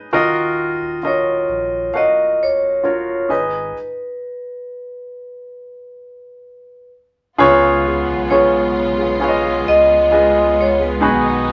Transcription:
Already playing: D#4 G#4 B4 D#5
0.12 D#1 D#3 F4 F#4 A#4 D#5
0.81 D#1
1.03 F4 F#4 A#4 D#5
1.07 C#5
1.48 A#1
1.94 D#1 F#4 A#4 D#5 F5 F#5
2.43 C#5
2.84 F4 F#4 A#4 C#5
3.29 G#1 D#4 G#4 B4 D#5
7.37 C#2 C#3 G#3 B3 F4 G#4 B4 C#5
7.84 G#3 B3 F4 G#4
8.08 B1
8.30 C#3 G#3 B3 F4 G#4 B4 C#5
8.98 B3 F4 G#4
9.20 B3 F4 G#4 B4 C#5
9.24 F5
9.29 D#5
9.44 B3 F4 G#4
9.66 C#2 G#3 B3 F4 G#4 D#5
10.11 C#3 G#3 B3 F4 G#4 B4 D#5
10.56 G#3 B3 F4 G#4
10.61 C#5
10.79 B3 F4 G#4 B4
11.01 B1 B2 D#3 F#3 B3 D#4 F#4 G#4 B4
11.47 F#3 B3

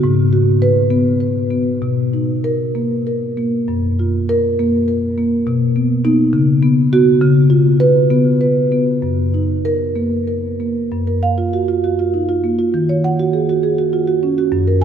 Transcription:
0.04 G#2
0.33 F#4
0.62 B4
0.90 B3
1.20 B4
1.51 B3
1.82 B2
2.13 D#4
2.44 A#4
2.75 A#3
3.07 A#4
3.37 A#3
3.68 F#2
3.99 F4
4.29 A#4
4.59 A#3
4.88 A#4
5.18 A#3
5.47 B2
5.76 B3
6.04 B3 D#4
6.33 C#3
6.62 B3
6.93 B3 F#4
7.22 C#3
7.50 F4
7.80 B4
8.10 B3
8.41 B4
8.72 B3
9.02 F#2
9.34 D#4
9.65 A#4
9.96 A#3
10.27 A#4
10.60 A#3
10.91 F#2
11.07 A#4
11.23 F5
11.38 F4
11.53 F#4
11.68 F4
11.84 F#4
11.99 F4
12.14 D#4
12.29 F4
12.44 A#3
12.59 F4
12.74 D#3
12.89 C#5
13.04 F#5
13.19 F#4
13.33 G#4
13.49 F#4
13.63 G#4
13.78 F#4
13.93 F4
14.08 F#4
14.23 C#4
14.38 F#4
14.52 F#2
14.67 A#4

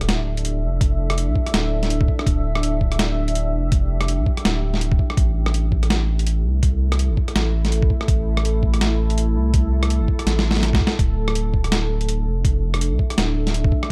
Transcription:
Already playing: D1 D4 A4 E5, sub drop
0.01 cross-stick, closed hi-hat
0.09 snare, closed hi-hat
0.37 closed hi-hat
0.45 closed hi-hat
0.63 F1
0.81 kick, closed hi-hat
1.10 cross-stick, closed hi-hat
1.18 closed hi-hat
1.28 C2
1.36 kick
1.47 cross-stick, closed hi-hat
1.53 D1, snare, closed hi-hat
1.83 snare, closed hi-hat
1.90 closed hi-hat
2.01 kick
2.08 kick
2.19 cross-stick
2.26 D1 G4, kick, closed hi-hat
2.55 cross-stick
2.63 closed hi-hat
2.81 kick
2.92 cross-stick, closed hi-hat
2.99 snare, closed hi-hat
3.28 closed hi-hat
3.35 closed hi-hat
3.54 F1
3.72 kick, closed hi-hat
4.01 cross-stick, closed hi-hat
4.08 closed hi-hat
4.19 C2
4.26 kick
4.37 cross-stick, closed hi-hat
4.45 D1, snare, closed hi-hat
4.74 snare
4.81 closed hi-hat
4.92 kick
4.99 kick
5.10 cross-stick
5.17 A1 A3 E4 A4, kick, closed hi-hat
5.46 cross-stick
5.54 closed hi-hat
5.72 kick
5.83 cross-stick, closed hi-hat
5.90 snare, closed hi-hat
6.19 closed hi-hat
6.27 closed hi-hat
6.45 C2
6.63 kick, closed hi-hat
6.92 cross-stick, closed hi-hat
6.99 closed hi-hat
7.10 G1
7.17 kick
7.28 cross-stick, closed hi-hat
7.35 A1, snare, closed hi-hat
7.65 snare, closed hi-hat
7.72 closed hi-hat
7.82 kick
7.90 kick
8.01 cross-stick
8.08 A1, kick, closed hi-hat
8.37 cross-stick
8.45 closed hi-hat
8.63 kick
8.74 cross-stick, closed hi-hat
8.81 snare, closed hi-hat
9.10 closed hi-hat
9.18 closed hi-hat
9.35 C2
9.54 kick, closed hi-hat
9.83 cross-stick, closed hi-hat
9.90 closed hi-hat
10.01 G1
10.08 kick
10.19 cross-stick, closed hi-hat
10.26 A1, snare, closed hi-hat
10.39 snare
10.51 snare
10.55 snare, closed hi-hat
10.60 snare
10.63 snare, closed hi-hat
10.65 snare
10.73 kick, snare
10.81 kick
10.87 snare
10.99 D1 D4 E5, kick, closed hi-hat
11.28 cross-stick
11.35 closed hi-hat
11.54 kick
11.64 cross-stick, closed hi-hat
11.72 snare, closed hi-hat
12.01 closed hi-hat
12.09 closed hi-hat
12.26 F1
12.45 kick, closed hi-hat
12.74 cross-stick, closed hi-hat
12.81 closed hi-hat
12.91 C2
12.99 kick
13.10 cross-stick, closed hi-hat
13.18 D1, snare, closed hi-hat
13.47 snare, closed hi-hat
13.54 closed hi-hat
13.64 kick
13.72 kick
13.83 cross-stick

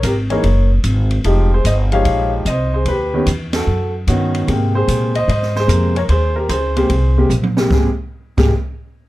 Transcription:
0.03 G#1 G4 A#4, kick, hi-hat pedal, ride
0.30 E3 A#3 D#4 G#4 A#4 C#5, ride
0.43 F#1, kick, ride
0.84 G#1, kick, hi-hat pedal, ride
1.11 ride
1.24 F1 F3 G#3 D#4 G4, kick, ride
1.54 G#4 C5
1.65 G1 C5 D#5, kick, hi-hat pedal, ride
1.92 F3 G#3 D#4 G4 C#5 F5, ride
2.05 A#1, kick, ride
2.45 C2 D#5, kick, hi-hat pedal, ride
2.49 C5
2.74 G#4 C5
2.85 D#2 B4, kick, ride
2.91 G4
3.14 D#3 B3 C#4 G4
3.26 E2, kick, hi-hat pedal, ride
3.53 A4, snare, ride
3.58 F#4
3.67 F#2
4.07 G2 D#3 B3 C#4 F#4, kick, hi-hat pedal, ride
4.35 ride
4.47 G#2 C3 G#3 A#3 G5, kick, ride
4.75 G#4 C5
4.88 A#2, kick, hi-hat pedal, ride
5.15 C5 D#5, ride
5.28 G#2 C5 D#5, kick, ride
5.42 snare
5.56 C5, snare
5.60 G#4
5.67 F2 C3 G#3 A#3 A#4, kick, hi-hat pedal, ride
5.96 A#4 C#5, ride
6.09 D#2 G#4 C5, kick, ride
6.36 G4 A#4
6.49 C#2 G#4 C5, kick, hi-hat pedal, ride
6.76 C3 G#3 A#3 G4 G#4 C5, ride
6.90 C2, kick, ride
7.17 C3 G#3 A#3 G4
7.30 A#1, hi-hat pedal, high tom
7.43 high tom
7.57 C3 G#3 A#3 G4, snare
7.70 G#1 C3 G#3 A#3 G4 G#4, kick, snare
8.37 G#1 C3 G#3 A#3 G4 G#4, kick, snare, crash

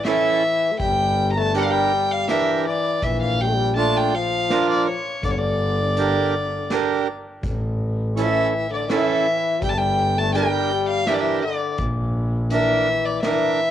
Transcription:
0.05 E3 C#4 E4 A4 E5, snare, closed hi-hat
0.72 A3
0.79 G1 G3 G5, kick, closed hi-hat
1.32 A#5
1.37 A3 A5
1.54 G3 D4 G4 A#4 G5, closed hi-hat
1.63 F5
1.70 G3 G5
2.11 F5
2.28 E3 D4 G4 A#4 E5, snare, closed hi-hat
2.68 D5
3.02 A#1 E3 E5, kick, closed hi-hat
3.22 F5
3.41 G3 G5
3.48 A3
3.55 G3
3.76 A3 D4 F4 D5 A5, closed hi-hat
3.97 G5
4.15 F3 F5
4.50 D4 F4 A#4, snare, closed hi-hat
4.70 D5
4.89 C#5
5.23 G1 D3 D5, kick, closed hi-hat
5.31 C#5
5.38 D3 D5
5.97 D4 G4 A#4, closed hi-hat
6.70 D4 G4 A#4, snare, closed hi-hat
7.43 A1, kick, closed hi-hat
8.16 E3 C#4 E4 A4, closed hi-hat
8.20 F3 E5
8.30 E3
8.70 D3 D5
8.89 E3 C#4 E4 A4 E5, snare, closed hi-hat
9.62 G1 G3 G5, kick, closed hi-hat
9.69 A5
9.77 G3 G5
10.18 A3 A5
10.34 G3 D4 G4 A#4 G5, closed hi-hat
10.42 A3
10.49 G3
10.89 F5
11.07 E3 D4 G4 A#4 E5, snare, closed hi-hat
11.14 D5
11.20 E3 E5
11.43 D3 D5
11.78 A#1, kick, closed hi-hat
12.50 E3 D4 A#4 E5, closed hi-hat
13.05 D5
13.23 E3 D4 A#4 E5, snare, closed hi-hat

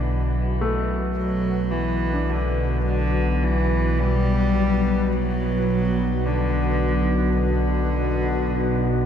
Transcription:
Already playing: B1 B2 D3 B3 F#4 B4
0.61 A3
1.16 F#3
1.71 E3
2.13 D4
2.30 D3
2.86 D3
3.43 E3
3.99 G3
5.12 F#3
6.26 D3
7.39 D3

